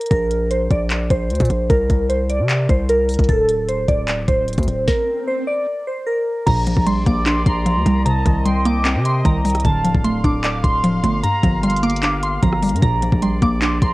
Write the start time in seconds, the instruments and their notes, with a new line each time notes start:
0.01 closed hi-hat
0.06 closed hi-hat
0.11 808-style bass A#1, synth keys A#4, kick, closed hi-hat
0.31 closed hi-hat
0.51 synth keys C5, closed hi-hat
0.71 808-style bass A#1, synth keys D5, kick, closed hi-hat
0.90 clap, closed hi-hat
1.10 808-style bass A#1, synth keys C5, kick, closed hi-hat
1.30 808-style bass D2, closed hi-hat
1.35 closed hi-hat
1.40 808-style bass A#2, kick, closed hi-hat
1.45 closed hi-hat
1.50 808-style bass A#1, closed hi-hat
1.70 808-style bass C2, synth keys A#4, kick, closed hi-hat
1.90 808-style bass C2, kick, closed hi-hat
2.09 synth keys C5, closed hi-hat
2.29 synth keys D5, closed hi-hat
2.39 808-style bass C3
2.49 clap, closed hi-hat
2.69 808-style bass C2, synth keys C5, kick, closed hi-hat
2.89 synth keys A#4, closed hi-hat
3.09 closed hi-hat, open hi-hat
3.14 closed hi-hat
3.19 808-style bass C2, kick, closed hi-hat
3.24 closed hi-hat
3.29 808-style bass D1, synth keys A4, kick, closed hi-hat, swell
3.49 closed hi-hat
3.68 synth keys C5, closed hi-hat
3.88 808-style bass D1, synth keys D5, kick, closed hi-hat
4.08 clap, closed hi-hat
4.28 808-style bass D1, synth keys C5, kick, closed hi-hat
4.48 closed hi-hat
4.53 closed hi-hat
4.58 808-style bass D2, kick, closed hi-hat
4.63 closed hi-hat
4.68 808-style bass D1, closed hi-hat
4.88 synth keys A#4, kick, snare
5.28 synth keys C5
5.47 synth keys D5
5.87 synth keys C5
6.07 synth keys A#4
6.46 808-style bass A#1, synth pluck A#2, brass ensemble A#3 G4 D5, synth keys A#5, kick, closed hi-hat, crash
6.67 synth pluck F3, closed hi-hat
6.77 808-style bass A#1, kick
6.86 synth pluck G3, synth keys C6, closed hi-hat
7.06 808-style bass A#1, synth pluck A#3, synth keys D6, kick, closed hi-hat
7.26 synth pluck D4, flute C6, clap, closed hi-hat
7.46 808-style bass A#1, flute A#5, synth keys C6, kick, closed hi-hat
7.66 synth pluck F3, closed hi-hat
7.76 808-style bass D2
7.86 808-style bass C2, synth pluck G3, closed hi-hat
8.06 synth pluck C3, brass ensemble C4 A#4 D#5, flute A5, synth keys A#5, closed hi-hat
8.26 808-style bass C2, synth pluck D#3, kick, closed hi-hat
8.45 synth pluck G3, flute G5, synth keys C6, closed hi-hat
8.65 synth pluck A#3, synth keys D6, closed hi-hat
8.85 synth pluck C4, clap, closed hi-hat
8.95 808-style bass C3
9.05 synth keys C6, closed hi-hat
9.25 808-style bass C2, synth pluck D#3, synth keys A#5, kick, closed hi-hat
9.45 synth pluck G3, closed hi-hat, open hi-hat
9.50 closed hi-hat
9.55 cross-stick, closed hi-hat
9.60 closed hi-hat
9.65 808-style bass D1, synth pluck D3, brass ensemble D4 A4 F5, synth keys A5, kick, closed hi-hat
9.85 synth pluck F3, closed hi-hat
9.95 808-style bass D1, kick
10.04 synth pluck A3, synth keys C6, closed hi-hat
10.24 808-style bass D1, synth pluck D4, synth keys D6, kick, closed hi-hat
10.44 synth pluck D5, flute D6, clap, closed hi-hat
10.64 808-style bass D1, synth keys C6, flute C6, kick, closed hi-hat
10.84 synth pluck F3, closed hi-hat
11.04 808-style bass G1, synth pluck A3, closed hi-hat
11.23 synth pluck G2, brass ensemble A#3 G4, synth keys A#5, flute A#5, closed hi-hat
11.43 808-style bass G1, synth pluck F3, kick, closed hi-hat
11.63 synth pluck G3, flute F5, synth keys C6, closed hi-hat
11.70 closed hi-hat
11.77 closed hi-hat
11.83 synth pluck A#3, synth keys D6, closed hi-hat
11.90 closed hi-hat
11.96 closed hi-hat
12.03 synth pluck D4, clap, closed hi-hat
12.23 synth keys C6, closed hi-hat
12.42 808-style bass G1, synth pluck F3, synth keys A#5, kick, closed hi-hat
12.53 cross-stick
12.63 synth pluck G3, closed hi-hat, open hi-hat
12.69 808-style bass G2, closed hi-hat
12.76 closed hi-hat
12.82 808-style bass A#1, synth pluck A#2, brass ensemble D5, synth keys A#5, kick, closed hi-hat
13.02 synth pluck F3, closed hi-hat
13.12 808-style bass A#1, kick
13.22 synth pluck G3, synth keys C6, closed hi-hat
13.42 808-style bass A#1, synth pluck A#3, synth keys D6, kick, closed hi-hat
13.62 synth pluck D4, flute C6, clap, closed hi-hat
13.82 808-style bass A#1, flute A#5, synth keys C6, kick, closed hi-hat